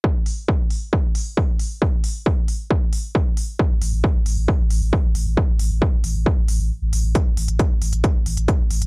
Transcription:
<<
  \new Staff \with { instrumentName = "Sub bass" } { \clef bass \time 4/4 \key c \major \tempo 4 = 135 r1 | r1 | r16 a,,16 a,,16 a,,16 r16 a,,16 a,,16 a,,16 r16 a,,16 a,,16 a,,16 r16 a,,16 a,,16 a,,16 | r16 a,,16 a,,16 a,,16 r16 a,,16 a,,16 a,,16 r16 a,,16 a,,16 a,,16 r16 a,,16 a,,16 a,,16 |
r16 a,,16 a,,16 a,,16 r16 a,,16 a,,16 a,,16 r16 a,,16 a,,16 a,,16 r16 a,,16 a,,16 a,,16 | }
  \new DrumStaff \with { instrumentName = "Drums" } \drummode { \time 4/4 bd8 hho8 bd8 hho8 bd8 hho8 bd8 hho8 | bd8 hho8 bd8 hho8 bd8 hho8 bd8 hho8 | bd8 hho8 bd8 hho8 bd8 hho8 bd8 hho8 | bd8 hho8 bd8 hho8 bd8 hho8 r8 hho8 |
<hh bd>8 hho16 hh16 <hh bd>8 hho16 hh16 <hh bd>8 hho16 hh16 <hh bd>8 hho16 hh16 | }
>>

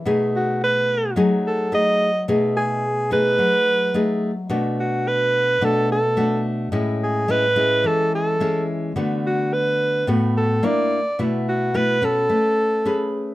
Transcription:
<<
  \new Staff \with { instrumentName = "Alto saxophone" } { \time 4/4 \key b \dorian \tempo 4 = 108 r8 fis'8 b'4 r8 a'8 dis''4 | r8 gis'4 b'2 r8 | r8 fis'8 b'4 a'8 a'4 r8 | r8 gis'8 b'4 a'8 a'4 r8 |
r8 fis'8 b'4 r8 a'8 d''4 | r8 fis'8 b'8 a'2 r8 | }
  \new Staff \with { instrumentName = "Nylon-string guitar" } { \time 4/4 \key b \dorian << { <a dis' gis'>2 <a dis' gis'>4 <a dis' gis'>8 r8 | <a dis' gis'>4 r8 <a dis' gis'>4. <a dis' gis'>8 r8 | <a d' fis'>2 <a d' fis'>8 r8 <a d' fis'>4 | <gis cis' e'>4 <gis cis' e'>8 <gis cis' e'>4. <gis cis' e'>4 |
<a b fis'>2 <a b fis'>4 <bes d' e'>8 r8 | <a e' fis'>4 <a e' fis'>8 <cis' b'>4. <cis' gis' b'>4 | } \\ { b,2 fis2 | b,2 fis2 | b,2 b,2 | a,2 e2 |
d2 a,4 r4 | b,2 a2 | } >> }
>>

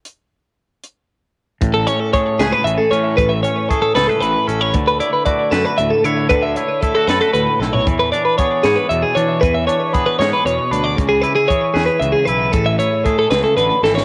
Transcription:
<<
  \new Staff \with { instrumentName = "Clean electric guitar" } { \time 6/8 \key a \major \tempo 4. = 77 r2. | r16 a'16 cis''16 a'16 cis''8 gis'16 b'16 e''16 a'16 cis''8 | b'16 e''16 cis''8 a'16 a'16 b'16 a'16 b'8 a'16 cis''16 | r16 b'16 d''16 b'16 d''8 a'16 b'16 e''16 a'16 cis''8 |
b'16 e''16 cis''8 a'16 a'16 b'16 a'16 b'8 a'16 cis''16 | r16 b'16 d''16 b'16 cis''8 gis'16 b'16 e''16 gis'16 cis''8 | b'16 e''16 cis''8 b'16 b'16 cis''16 b'16 cis''8 b'16 d''16 | r16 gis'16 b'16 gis'16 cis''8 gis'16 b'16 e''16 gis'16 b'8 |
a'16 e''16 cis''8 a'16 a'16 b'16 a'16 b'8 a'16 cis''16 | }
  \new Staff \with { instrumentName = "Clean electric guitar" } { \time 6/8 \key a \major << { r2. | r8 cis'8 gis'8 b'4 cis'8 | r8 cis'8 gis'8 a'16 b'8. cis'8 | r8 e'8 fis'8 b'4 e'8 |
r8 e'8 e'16 fis'16 a'16 b'8. e'8 | r8 d'8 gis'8 cis''4 d'8 | r8 d'8 gis'8 cis''4 d'8 | r8 e'8 gis'8 b'4 e'8 |
r8 e'8 gis'2 | } \\ { r2. | a,4 a4 e4 | a,4 a4 e4 | d4 a4 a,4 |
d4 a4 a,4 | e4 b4 b,4 | e4 b4 b,4 | cis4 e4 cis4 |
a,4 a8 cis8 d8 e8 | } >> }
  \new Staff \with { instrumentName = "Picked electric bass" } { \clef bass \time 6/8 \key a \major r2. | a,,8 r4 cis,16 r16 a,,16 r16 a,8 | a,,8 r4 cis,16 r16 a,,16 r16 a,,8 | d,8 r4 fis,16 r16 d,16 r16 d8 |
d,8 r4 fis,16 r16 d,16 r16 b,,8 | e,8 r4 gis,16 r16 e,16 r16 e8 | e,8 r4 gis,16 r16 e,16 r16 d,8 | cis,8 r4 e,16 r16 cis,16 r16 b,,8 |
a,,8 r4 cis,16 r16 a,,16 r16 gis,,8 | }
  \new DrumStaff \with { instrumentName = "Drums" } \drummode { \time 6/8 hh4. hh4. | <hh bd>8 hh8 <hh bd>8 <hh sn>8 hh8 hh8 | <hh bd>8 hh8 <hh bd>8 <hh sn>8 hh8 hh8 | <hh bd>8 hh8 <hh bd>8 <hh sn>8 hh8 hh8 |
<hh bd>8 hh8 <hh bd>8 <hh sn>8 hh8 sn16 tomfh16 | <hh bd>8 hh8 <hh bd>8 <hh sn>8 hh8 hh8 | <hh bd>8 hh8 <hh bd>8 <hh sn>8 hh8 hh8 | <hh bd>8 hh8 <hh bd>8 <hh sn>8 hh8 hh8 |
<hh bd>8 hh8 <hh bd>8 <hh sn>8 hh8 sn16 sn16 | }
>>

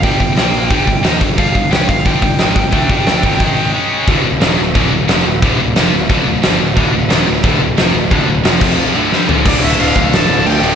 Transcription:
<<
  \new Staff \with { instrumentName = "Lead electric guitar" } { \time 4/4 \key d \minor \tempo 4 = 179 g''2. r4 | f''4 g''8 f''8 g''2~ | g''2. r4 | r1 |
r1 | r1 | r1 | d''8 e''8 f''4 a''4 g''4 | }
  \new Staff \with { instrumentName = "Distorted electric guitar" } { \clef bass \time 4/4 \key d \minor <g, d g>8 <g, d>8 <bes, f bes>4 <g, d g>8 <g, d>8 <ees bes ees'>8 <g, d>8 | <g, d g>8 <g, d>8 <cis gis cis'>8 <g, d>8 <g, d g>8 <g, d>8 <gis, ees gis>8 <g, d>8 | <d a d'>8 <g, d g>8 <d a d'>8 <g, d g>8 <gis, dis gis>4 <cis gis cis'>4 | <d, a, d>8 <d, a,>8 <ees, bes, ees>8 <d, a,>8 <d, a, d>8 <d, a,>8 <f, c f>8 <d, a,>8 |
<d, a, d>8 <d, a,>8 <f, c f>8 <d, a,>8 <d, a, d>8 <d, a,>8 <g, d g>8 <d, a,>8 | <d, a, d>8 <d, a,>8 <ees, bes, ees>8 <d, a,>8 <d, a, d>8 <d, a,>8 <f, c f>8 <d, a,>8 | <d, a, d>8 <d, a,>8 <f, c f>8 <f, c f>4 <d, a, d>8 <g, d g>8 <d, a, d>8 | <d, a, d>2 <d, a, d>2 | }
  \new Staff \with { instrumentName = "Distorted electric guitar" } { \clef bass \time 4/4 \key d \minor <g, d g>8 <g, d>8 <bes, f bes>4 <g, d g>8 <g, d>8 <ees bes ees'>8 <g, d>8 | <g, d g>8 <g, d>8 <cis gis cis'>8 <g, d>8 <g, d g>8 <g, d>8 <gis, ees gis>8 <g, d>8 | <d a d'>8 <g, d g>8 <d a d'>8 <g, d g>8 <gis, dis gis>4 <cis gis cis'>4 | <d, a, d>8 <d, a,>8 <ees, bes, ees>8 <d, a,>8 <d, a, d>8 <d, a,>8 <f, c f>8 <d, a,>8 |
<d, a, d>8 <d, a,>8 <f, c f>8 <d, a,>8 <d, a, d>8 <d, a,>8 <g, d g>8 <d, a,>8 | <d, a, d>8 <d, a,>8 <ees, bes, ees>8 <d, a,>8 <d, a, d>8 <d, a,>8 <f, c f>8 <d, a,>8 | <d, a, d>8 <d, a,>8 <f, c f>8 <f, c f>4 <d, a, d>8 <g, d g>8 <d, a, d>8 | <d, a, d>2.~ <d, a, d>8 <d, a, d>8 | }
  \new Staff \with { instrumentName = "Overdriven electric guitar" } { \clef bass \time 4/4 \key d \minor r1 | r1 | r1 | r1 |
r1 | <d, a, d>8 <d, a,>8 <ees, bes, ees>8 <d, a,>8 <d, a, d>8 <d, a,>8 <f, c f>8 <d, a,>8 | <d, a, d>8 <d, a,>8 <f, c f>8 <f, c f>4 <d, a, d>8 <g, d g>8 <d, a, d>8 | <d, a, d>8 <d, a, d>8 <d, a, d>8 <d, a, d>8 <d, a, d>8 <d, a, d>8 <d, a, d>8 <d, a, d>8 | }
  \new Staff \with { instrumentName = "Picked electric bass" } { \clef bass \time 4/4 \key d \minor g,,8 g,,8 bes,,4 g,,8 g,,8 ees,8 g,,8 | g,,8 g,,8 cis,8 g,,8 g,,8 g,,8 gis,,8 g,,8 | d,8 g,,8 d,8 g,,8 gis,,4 r4 | d,,8 d,,8 ees,,8 d,,8 d,,8 d,,8 f,,8 d,,8 |
d,,8 d,,8 f,,8 d,,8 d,,8 d,,8 g,,8 d,,8 | d,,8 d,,8 ees,,8 d,,8 d,,8 d,,8 f,,8 d,,8 | d,,8 d,,8 f,,8 f,,8 r2 | d,,8 d,,8 d,,8 d,,8 d,,8 d,,8 d,8 d,,8 | }
  \new DrumStaff \with { instrumentName = "Drums" } \drummode { \time 4/4 <hho bd>8 <hho bd>8 <hho sn>8 hho8 <hho bd>8 <hho bd>8 <hho sn>8 <hho bd>8 | <hho bd>8 <hho bd>8 <hho sn>8 <hho bd>16 sn16 <hho bd>8 <hho bd>8 <hho sn>8 <hho bd>8 | <hho bd>8 <hho bd>8 <hho sn>8 <hho bd>16 sn16 <hho bd>8 hho8 r4 | <cymc bd>4 <cymc sn>4 <cymc bd>4 <cymc sn>4 |
<cymc bd>4 <cymc sn>4 <cymc bd>4 <cymc sn>4 | <cymc bd>4 <cymc sn>4 <cymc bd>4 <cymc sn>4 | <cymc bd>4 <cymc sn>8 <cymc bd>8 r4 sn8 tomfh8 | <cymc bd>8 cymc8 cymc8 <cymc bd>8 <cymc sn>8 cymc8 cymc8 cymc8 | }
>>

